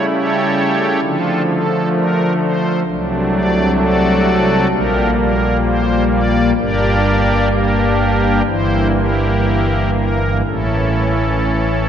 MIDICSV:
0, 0, Header, 1, 2, 480
1, 0, Start_track
1, 0, Tempo, 917431
1, 1504, Time_signature, 4, 2, 24, 8
1, 2468, Tempo, 934579
1, 4388, Tempo, 977199
1, 4868, Tempo, 1022147
1, 6021, End_track
2, 0, Start_track
2, 0, Title_t, "Pipe organ"
2, 0, Program_c, 0, 19
2, 0, Note_on_c, 0, 49, 67
2, 0, Note_on_c, 0, 55, 58
2, 0, Note_on_c, 0, 57, 56
2, 0, Note_on_c, 0, 64, 53
2, 62, Note_on_c, 0, 67, 92
2, 62, Note_on_c, 0, 69, 96
2, 62, Note_on_c, 0, 73, 125
2, 522, Note_off_c, 0, 49, 0
2, 522, Note_off_c, 0, 55, 0
2, 522, Note_off_c, 0, 57, 0
2, 522, Note_off_c, 0, 64, 0
2, 526, Note_off_c, 0, 69, 0
2, 527, Note_off_c, 0, 67, 0
2, 527, Note_off_c, 0, 73, 0
2, 535, Note_on_c, 0, 53, 60
2, 537, Note_on_c, 0, 50, 71
2, 537, Note_on_c, 0, 57, 61
2, 537, Note_on_c, 0, 69, 113
2, 538, Note_on_c, 0, 65, 91
2, 539, Note_on_c, 0, 62, 85
2, 744, Note_off_c, 0, 69, 0
2, 745, Note_off_c, 0, 62, 0
2, 745, Note_off_c, 0, 65, 0
2, 780, Note_on_c, 0, 69, 107
2, 986, Note_off_c, 0, 69, 0
2, 1013, Note_on_c, 0, 70, 119
2, 1221, Note_off_c, 0, 70, 0
2, 1256, Note_on_c, 0, 72, 105
2, 1463, Note_off_c, 0, 72, 0
2, 1478, Note_off_c, 0, 53, 0
2, 1479, Note_off_c, 0, 57, 0
2, 1480, Note_off_c, 0, 50, 0
2, 1495, Note_on_c, 0, 62, 59
2, 1496, Note_on_c, 0, 54, 62
2, 1497, Note_on_c, 0, 36, 70
2, 1497, Note_on_c, 0, 48, 70
2, 1497, Note_on_c, 0, 57, 59
2, 1739, Note_on_c, 0, 74, 116
2, 1944, Note_off_c, 0, 74, 0
2, 1974, Note_on_c, 0, 66, 94
2, 1974, Note_on_c, 0, 69, 94
2, 1975, Note_on_c, 0, 74, 117
2, 2441, Note_off_c, 0, 54, 0
2, 2441, Note_off_c, 0, 62, 0
2, 2442, Note_off_c, 0, 36, 0
2, 2442, Note_off_c, 0, 48, 0
2, 2442, Note_off_c, 0, 57, 0
2, 2446, Note_off_c, 0, 66, 0
2, 2447, Note_off_c, 0, 69, 0
2, 2447, Note_off_c, 0, 74, 0
2, 2461, Note_on_c, 0, 34, 71
2, 2461, Note_on_c, 0, 55, 62
2, 2461, Note_on_c, 0, 67, 86
2, 2462, Note_on_c, 0, 70, 109
2, 2463, Note_on_c, 0, 46, 68
2, 2463, Note_on_c, 0, 58, 65
2, 2463, Note_on_c, 0, 62, 81
2, 2668, Note_off_c, 0, 62, 0
2, 2668, Note_off_c, 0, 67, 0
2, 2668, Note_off_c, 0, 70, 0
2, 2702, Note_on_c, 0, 70, 106
2, 2908, Note_off_c, 0, 70, 0
2, 2944, Note_on_c, 0, 72, 108
2, 3147, Note_off_c, 0, 72, 0
2, 3186, Note_on_c, 0, 74, 123
2, 3386, Note_off_c, 0, 74, 0
2, 3397, Note_off_c, 0, 34, 0
2, 3397, Note_off_c, 0, 55, 0
2, 3398, Note_off_c, 0, 46, 0
2, 3398, Note_off_c, 0, 58, 0
2, 3423, Note_on_c, 0, 43, 74
2, 3424, Note_on_c, 0, 31, 76
2, 3424, Note_on_c, 0, 62, 59
2, 3425, Note_on_c, 0, 55, 55
2, 3426, Note_on_c, 0, 58, 55
2, 3427, Note_on_c, 0, 70, 91
2, 3427, Note_on_c, 0, 74, 114
2, 3428, Note_on_c, 0, 67, 98
2, 3889, Note_off_c, 0, 70, 0
2, 3889, Note_off_c, 0, 74, 0
2, 3890, Note_off_c, 0, 62, 0
2, 3890, Note_off_c, 0, 67, 0
2, 3901, Note_on_c, 0, 62, 83
2, 3902, Note_on_c, 0, 70, 106
2, 3903, Note_on_c, 0, 67, 83
2, 4367, Note_off_c, 0, 43, 0
2, 4368, Note_off_c, 0, 31, 0
2, 4368, Note_off_c, 0, 55, 0
2, 4369, Note_off_c, 0, 58, 0
2, 4372, Note_off_c, 0, 62, 0
2, 4373, Note_off_c, 0, 67, 0
2, 4373, Note_off_c, 0, 70, 0
2, 4393, Note_on_c, 0, 72, 115
2, 4394, Note_on_c, 0, 31, 66
2, 4395, Note_on_c, 0, 43, 65
2, 4395, Note_on_c, 0, 64, 51
2, 4396, Note_on_c, 0, 52, 54
2, 4396, Note_on_c, 0, 58, 56
2, 4592, Note_off_c, 0, 72, 0
2, 4618, Note_off_c, 0, 64, 0
2, 4626, Note_on_c, 0, 70, 94
2, 4627, Note_on_c, 0, 64, 70
2, 4628, Note_on_c, 0, 67, 72
2, 5091, Note_off_c, 0, 70, 0
2, 5092, Note_off_c, 0, 64, 0
2, 5092, Note_off_c, 0, 67, 0
2, 5105, Note_on_c, 0, 70, 84
2, 5312, Note_off_c, 0, 70, 0
2, 5332, Note_off_c, 0, 31, 0
2, 5332, Note_off_c, 0, 43, 0
2, 5333, Note_off_c, 0, 52, 0
2, 5333, Note_off_c, 0, 58, 0
2, 5347, Note_on_c, 0, 33, 57
2, 5347, Note_on_c, 0, 45, 61
2, 5347, Note_on_c, 0, 52, 49
2, 5347, Note_on_c, 0, 64, 69
2, 5347, Note_on_c, 0, 69, 97
2, 5348, Note_on_c, 0, 61, 67
2, 6021, Note_off_c, 0, 33, 0
2, 6021, Note_off_c, 0, 45, 0
2, 6021, Note_off_c, 0, 52, 0
2, 6021, Note_off_c, 0, 61, 0
2, 6021, Note_off_c, 0, 64, 0
2, 6021, Note_off_c, 0, 69, 0
2, 6021, End_track
0, 0, End_of_file